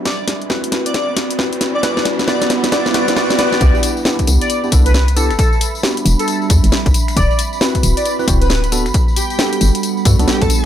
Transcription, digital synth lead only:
X:1
M:4/4
L:1/16
Q:"Swing 16ths" 1/4=135
K:G
V:1 name="Digital synth lead"
d z6 d d z6 d | d z3 d z3 d z d z d z d z | d z6 d z3 B B z A z | A A z4 z A A z6 z |
d z6 d z3 B B z3 | z2 G G G G z6 G A3 |]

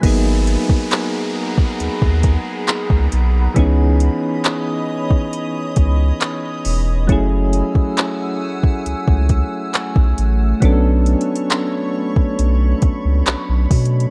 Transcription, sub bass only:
X:1
M:4/4
L:1/16
Q:1/4=68
K:G#phr
V:1 name="Sub bass" clef=bass
G,,,3 z4 z D,, D,,2 z2 C,, B,,,2 | C,,3 z6 z C,,2 z2 E,,,2 | F,,,3 z4 z C,, C,,2 z2 B,,, A,,,2 | B,,,3 z4 z B,,,2 C,, C,, B,,, B,,, B,,2 |]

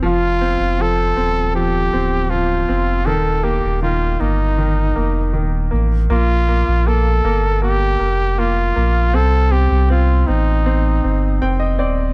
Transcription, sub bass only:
X:1
M:4/4
L:1/16
Q:1/4=79
K:Fmix
V:1 name="Sub bass" clef=bass
F,,,3 F,,,3 E,,,4 D,,,4 F,,,2 | E,,,3 E,,,3 G,,,4 F,,,2 E,,,2 A,,,2 | B,,,3 B,,,3 G,,,4 F,,,4 B,,,2 | C,,3 C,,3 A,,,4 G,,,2 F,,,2 E,,,2 |]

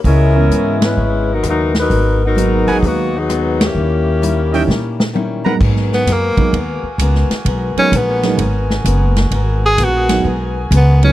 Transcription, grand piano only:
X:1
M:4/4
L:1/8
Q:"Swing" 1/4=129
K:G#m
V:1 name="Grand piano"
z [E,G,B,Cd]3 z4 | z2 [F,G,A,B,D]3 z3 | z3 [E,=G,A,CD] z3 [F,^G,A,B,D]- | [F,G,A,B,D]2 z [F,G,A,B,D] z4 |
z [F,G,A,B,D] z [F,G,A,B,D] z4 | z3 [F,G,A,B,D] z3 [F,G,A,B,D] |]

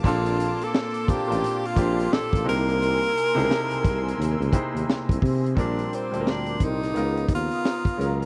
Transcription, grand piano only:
X:1
M:4/4
L:1/16
Q:"Swing 16ths" 1/4=87
K:Cdor
V:1 name="Grand piano"
[B,,B,CDA]4- [B,,B,CDA] z [B,,B,CDA] [B,,B,CDF]3 [B,,B,CDG]4 [C,C^D=E^GB]2- | [C,C^D=E^GB]2 z [C,CDEGAB]6 z [C,CDEGc]4- [C,CDEGc] z | [B,,G,CDB]3 [B,,G,CABd]4- [B,,G,CABd] [_D,_CEFB]4- [D,CEFB] z [D,_G,_DF_AB]2 |]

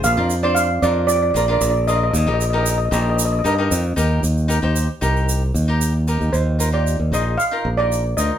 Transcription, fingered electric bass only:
X:1
M:4/4
L:1/16
Q:1/4=114
K:Eb
V:1 name="Fingered electric bass" clef=bass
B,,, F,,4- F,, F,,4 B,,,2 B,,,4 | E,, B,,,4- B,,, B,,,4 G,,2 F,,2 E,,2 | E,,3 E,,2 z C,,4 E,,4- E,, E,, | E,,4- E,, E,, B,,,2 z2 B,,,4 D,, z |]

